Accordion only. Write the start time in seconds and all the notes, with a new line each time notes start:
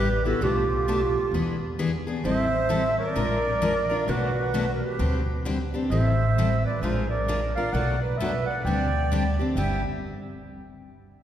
Already playing: G4
0.27 F#4
0.42 F4
2.25 C5
3.00 A#4
4.08 F#4
4.74 F#4
4.83 G4
5.91 C5
6.64 B4
6.80 G#4
7.10 A#4
7.55 D5
7.71 D5
8.01 B4
8.17 B4
8.46 D5
8.64 D5
9.56 E5